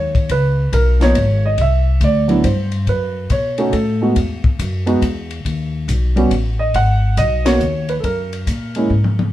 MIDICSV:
0, 0, Header, 1, 4, 480
1, 0, Start_track
1, 0, Tempo, 430416
1, 321, Time_signature, 3, 2, 24, 8
1, 10403, End_track
2, 0, Start_track
2, 0, Title_t, "Grand piano"
2, 0, Program_c, 0, 0
2, 0, Note_on_c, 0, 73, 78
2, 345, Note_off_c, 0, 73, 0
2, 350, Note_on_c, 0, 71, 88
2, 821, Note_on_c, 0, 70, 82
2, 830, Note_off_c, 0, 71, 0
2, 1114, Note_on_c, 0, 53, 64
2, 1122, Note_on_c, 0, 58, 61
2, 1134, Note_off_c, 0, 70, 0
2, 1135, Note_on_c, 0, 59, 64
2, 1139, Note_on_c, 0, 73, 99
2, 1140, Note_on_c, 0, 63, 77
2, 1264, Note_off_c, 0, 53, 0
2, 1268, Note_off_c, 0, 58, 0
2, 1275, Note_off_c, 0, 59, 0
2, 1277, Note_off_c, 0, 63, 0
2, 1621, Note_off_c, 0, 73, 0
2, 1623, Note_on_c, 0, 75, 81
2, 1765, Note_off_c, 0, 75, 0
2, 1799, Note_on_c, 0, 76, 87
2, 2274, Note_off_c, 0, 76, 0
2, 2274, Note_on_c, 0, 74, 91
2, 2543, Note_on_c, 0, 54, 59
2, 2555, Note_on_c, 0, 59, 52
2, 2563, Note_on_c, 0, 62, 57
2, 2567, Note_on_c, 0, 64, 65
2, 2699, Note_off_c, 0, 54, 0
2, 2705, Note_off_c, 0, 59, 0
2, 2708, Note_off_c, 0, 62, 0
2, 2710, Note_off_c, 0, 64, 0
2, 2725, Note_on_c, 0, 72, 71
2, 2752, Note_off_c, 0, 74, 0
2, 3170, Note_off_c, 0, 72, 0
2, 3223, Note_on_c, 0, 71, 77
2, 3696, Note_on_c, 0, 73, 80
2, 3706, Note_off_c, 0, 71, 0
2, 3996, Note_on_c, 0, 57, 67
2, 3997, Note_on_c, 0, 61, 63
2, 4005, Note_on_c, 0, 63, 61
2, 4007, Note_on_c, 0, 66, 69
2, 4145, Note_off_c, 0, 57, 0
2, 4146, Note_off_c, 0, 61, 0
2, 4149, Note_off_c, 0, 63, 0
2, 4151, Note_off_c, 0, 66, 0
2, 4153, Note_on_c, 0, 69, 59
2, 4183, Note_off_c, 0, 73, 0
2, 4476, Note_on_c, 0, 56, 58
2, 4483, Note_on_c, 0, 59, 52
2, 4488, Note_on_c, 0, 63, 47
2, 4489, Note_on_c, 0, 66, 63
2, 4526, Note_off_c, 0, 69, 0
2, 4625, Note_off_c, 0, 56, 0
2, 4628, Note_off_c, 0, 59, 0
2, 4631, Note_off_c, 0, 63, 0
2, 4632, Note_off_c, 0, 66, 0
2, 5423, Note_on_c, 0, 59, 62
2, 5428, Note_on_c, 0, 56, 71
2, 5430, Note_on_c, 0, 63, 62
2, 5441, Note_on_c, 0, 66, 72
2, 5578, Note_off_c, 0, 59, 0
2, 5581, Note_off_c, 0, 56, 0
2, 5582, Note_off_c, 0, 63, 0
2, 5587, Note_off_c, 0, 66, 0
2, 6869, Note_on_c, 0, 55, 64
2, 6877, Note_on_c, 0, 59, 58
2, 6880, Note_on_c, 0, 61, 62
2, 6889, Note_on_c, 0, 66, 72
2, 7021, Note_off_c, 0, 55, 0
2, 7025, Note_off_c, 0, 59, 0
2, 7027, Note_off_c, 0, 61, 0
2, 7031, Note_off_c, 0, 66, 0
2, 7353, Note_on_c, 0, 75, 84
2, 7524, Note_off_c, 0, 75, 0
2, 7534, Note_on_c, 0, 78, 96
2, 8003, Note_on_c, 0, 75, 94
2, 8021, Note_off_c, 0, 78, 0
2, 8310, Note_on_c, 0, 59, 62
2, 8312, Note_on_c, 0, 58, 72
2, 8316, Note_on_c, 0, 73, 90
2, 8317, Note_on_c, 0, 63, 63
2, 8324, Note_off_c, 0, 75, 0
2, 8327, Note_on_c, 0, 66, 76
2, 8461, Note_off_c, 0, 59, 0
2, 8462, Note_off_c, 0, 58, 0
2, 8464, Note_off_c, 0, 63, 0
2, 8470, Note_off_c, 0, 66, 0
2, 8803, Note_on_c, 0, 71, 77
2, 8809, Note_off_c, 0, 73, 0
2, 8851, Note_off_c, 0, 71, 0
2, 8922, Note_on_c, 0, 69, 53
2, 8968, Note_off_c, 0, 69, 0
2, 8971, Note_on_c, 0, 70, 71
2, 9769, Note_on_c, 0, 56, 62
2, 9774, Note_on_c, 0, 58, 54
2, 9783, Note_on_c, 0, 61, 55
2, 9787, Note_on_c, 0, 64, 64
2, 9911, Note_off_c, 0, 56, 0
2, 9913, Note_off_c, 0, 58, 0
2, 9918, Note_off_c, 0, 61, 0
2, 9920, Note_off_c, 0, 64, 0
2, 10195, Note_off_c, 0, 70, 0
2, 10403, End_track
3, 0, Start_track
3, 0, Title_t, "Upright bass"
3, 0, Program_c, 1, 32
3, 0, Note_on_c, 1, 39, 85
3, 312, Note_off_c, 1, 39, 0
3, 331, Note_on_c, 1, 37, 72
3, 792, Note_off_c, 1, 37, 0
3, 810, Note_on_c, 1, 35, 88
3, 1271, Note_off_c, 1, 35, 0
3, 1284, Note_on_c, 1, 32, 84
3, 1748, Note_off_c, 1, 32, 0
3, 1762, Note_on_c, 1, 36, 74
3, 2227, Note_off_c, 1, 36, 0
3, 2237, Note_on_c, 1, 38, 84
3, 2705, Note_off_c, 1, 38, 0
3, 2722, Note_on_c, 1, 43, 87
3, 3187, Note_off_c, 1, 43, 0
3, 3203, Note_on_c, 1, 42, 72
3, 3668, Note_off_c, 1, 42, 0
3, 3679, Note_on_c, 1, 47, 84
3, 4146, Note_off_c, 1, 47, 0
3, 4162, Note_on_c, 1, 45, 79
3, 4627, Note_off_c, 1, 45, 0
3, 4639, Note_on_c, 1, 40, 73
3, 5105, Note_off_c, 1, 40, 0
3, 5123, Note_on_c, 1, 42, 81
3, 5588, Note_off_c, 1, 42, 0
3, 5593, Note_on_c, 1, 40, 80
3, 6062, Note_off_c, 1, 40, 0
3, 6077, Note_on_c, 1, 39, 71
3, 6544, Note_off_c, 1, 39, 0
3, 6556, Note_on_c, 1, 35, 88
3, 7024, Note_off_c, 1, 35, 0
3, 7033, Note_on_c, 1, 33, 83
3, 7502, Note_off_c, 1, 33, 0
3, 7521, Note_on_c, 1, 32, 78
3, 7986, Note_off_c, 1, 32, 0
3, 7998, Note_on_c, 1, 35, 85
3, 8464, Note_off_c, 1, 35, 0
3, 8474, Note_on_c, 1, 39, 88
3, 8942, Note_off_c, 1, 39, 0
3, 8958, Note_on_c, 1, 42, 73
3, 9424, Note_off_c, 1, 42, 0
3, 9444, Note_on_c, 1, 46, 81
3, 9908, Note_off_c, 1, 46, 0
3, 9924, Note_on_c, 1, 44, 85
3, 10388, Note_off_c, 1, 44, 0
3, 10403, End_track
4, 0, Start_track
4, 0, Title_t, "Drums"
4, 165, Note_on_c, 9, 36, 45
4, 170, Note_on_c, 9, 51, 38
4, 277, Note_off_c, 9, 36, 0
4, 281, Note_off_c, 9, 51, 0
4, 327, Note_on_c, 9, 51, 58
4, 331, Note_on_c, 9, 36, 17
4, 439, Note_off_c, 9, 51, 0
4, 443, Note_off_c, 9, 36, 0
4, 810, Note_on_c, 9, 36, 18
4, 812, Note_on_c, 9, 44, 47
4, 812, Note_on_c, 9, 51, 57
4, 921, Note_off_c, 9, 36, 0
4, 923, Note_off_c, 9, 44, 0
4, 923, Note_off_c, 9, 51, 0
4, 1126, Note_on_c, 9, 51, 40
4, 1127, Note_on_c, 9, 38, 47
4, 1238, Note_off_c, 9, 51, 0
4, 1239, Note_off_c, 9, 38, 0
4, 1284, Note_on_c, 9, 51, 54
4, 1285, Note_on_c, 9, 36, 19
4, 1395, Note_off_c, 9, 51, 0
4, 1397, Note_off_c, 9, 36, 0
4, 1760, Note_on_c, 9, 51, 50
4, 1763, Note_on_c, 9, 36, 19
4, 1871, Note_off_c, 9, 51, 0
4, 1875, Note_off_c, 9, 36, 0
4, 2239, Note_on_c, 9, 44, 48
4, 2239, Note_on_c, 9, 51, 56
4, 2242, Note_on_c, 9, 36, 21
4, 2351, Note_off_c, 9, 44, 0
4, 2351, Note_off_c, 9, 51, 0
4, 2354, Note_off_c, 9, 36, 0
4, 2552, Note_on_c, 9, 51, 37
4, 2664, Note_off_c, 9, 51, 0
4, 2720, Note_on_c, 9, 44, 49
4, 2720, Note_on_c, 9, 51, 59
4, 2722, Note_on_c, 9, 36, 23
4, 2831, Note_off_c, 9, 44, 0
4, 2831, Note_off_c, 9, 51, 0
4, 2834, Note_off_c, 9, 36, 0
4, 3029, Note_on_c, 9, 51, 40
4, 3141, Note_off_c, 9, 51, 0
4, 3201, Note_on_c, 9, 36, 22
4, 3201, Note_on_c, 9, 51, 50
4, 3312, Note_off_c, 9, 51, 0
4, 3313, Note_off_c, 9, 36, 0
4, 3677, Note_on_c, 9, 44, 41
4, 3677, Note_on_c, 9, 51, 55
4, 3681, Note_on_c, 9, 36, 20
4, 3789, Note_off_c, 9, 44, 0
4, 3789, Note_off_c, 9, 51, 0
4, 3793, Note_off_c, 9, 36, 0
4, 3990, Note_on_c, 9, 51, 40
4, 4101, Note_off_c, 9, 51, 0
4, 4157, Note_on_c, 9, 51, 53
4, 4160, Note_on_c, 9, 36, 23
4, 4269, Note_off_c, 9, 51, 0
4, 4271, Note_off_c, 9, 36, 0
4, 4639, Note_on_c, 9, 51, 54
4, 4641, Note_on_c, 9, 36, 21
4, 4750, Note_off_c, 9, 51, 0
4, 4752, Note_off_c, 9, 36, 0
4, 4953, Note_on_c, 9, 36, 50
4, 5064, Note_off_c, 9, 36, 0
4, 5120, Note_on_c, 9, 36, 18
4, 5123, Note_on_c, 9, 44, 46
4, 5123, Note_on_c, 9, 51, 58
4, 5231, Note_off_c, 9, 36, 0
4, 5235, Note_off_c, 9, 44, 0
4, 5235, Note_off_c, 9, 51, 0
4, 5431, Note_on_c, 9, 51, 40
4, 5543, Note_off_c, 9, 51, 0
4, 5598, Note_on_c, 9, 36, 18
4, 5601, Note_on_c, 9, 44, 49
4, 5601, Note_on_c, 9, 51, 61
4, 5710, Note_off_c, 9, 36, 0
4, 5713, Note_off_c, 9, 44, 0
4, 5713, Note_off_c, 9, 51, 0
4, 5917, Note_on_c, 9, 51, 40
4, 6029, Note_off_c, 9, 51, 0
4, 6078, Note_on_c, 9, 36, 20
4, 6087, Note_on_c, 9, 51, 52
4, 6190, Note_off_c, 9, 36, 0
4, 6199, Note_off_c, 9, 51, 0
4, 6558, Note_on_c, 9, 36, 16
4, 6564, Note_on_c, 9, 44, 53
4, 6564, Note_on_c, 9, 51, 58
4, 6669, Note_off_c, 9, 36, 0
4, 6675, Note_off_c, 9, 44, 0
4, 6675, Note_off_c, 9, 51, 0
4, 6877, Note_on_c, 9, 51, 40
4, 6989, Note_off_c, 9, 51, 0
4, 7037, Note_on_c, 9, 36, 19
4, 7037, Note_on_c, 9, 51, 52
4, 7149, Note_off_c, 9, 36, 0
4, 7149, Note_off_c, 9, 51, 0
4, 7517, Note_on_c, 9, 36, 18
4, 7519, Note_on_c, 9, 51, 54
4, 7628, Note_off_c, 9, 36, 0
4, 7631, Note_off_c, 9, 51, 0
4, 7998, Note_on_c, 9, 44, 55
4, 7998, Note_on_c, 9, 51, 59
4, 7999, Note_on_c, 9, 36, 16
4, 8110, Note_off_c, 9, 44, 0
4, 8110, Note_off_c, 9, 51, 0
4, 8111, Note_off_c, 9, 36, 0
4, 8317, Note_on_c, 9, 51, 63
4, 8318, Note_on_c, 9, 38, 69
4, 8428, Note_off_c, 9, 51, 0
4, 8429, Note_off_c, 9, 38, 0
4, 8479, Note_on_c, 9, 44, 55
4, 8590, Note_off_c, 9, 44, 0
4, 8794, Note_on_c, 9, 51, 43
4, 8906, Note_off_c, 9, 51, 0
4, 8963, Note_on_c, 9, 36, 21
4, 8964, Note_on_c, 9, 51, 50
4, 9075, Note_off_c, 9, 36, 0
4, 9075, Note_off_c, 9, 51, 0
4, 9286, Note_on_c, 9, 51, 44
4, 9398, Note_off_c, 9, 51, 0
4, 9445, Note_on_c, 9, 36, 20
4, 9447, Note_on_c, 9, 44, 52
4, 9447, Note_on_c, 9, 51, 54
4, 9556, Note_off_c, 9, 36, 0
4, 9559, Note_off_c, 9, 44, 0
4, 9559, Note_off_c, 9, 51, 0
4, 9755, Note_on_c, 9, 51, 40
4, 9867, Note_off_c, 9, 51, 0
4, 10085, Note_on_c, 9, 47, 53
4, 10197, Note_off_c, 9, 47, 0
4, 10250, Note_on_c, 9, 47, 73
4, 10361, Note_off_c, 9, 47, 0
4, 10403, End_track
0, 0, End_of_file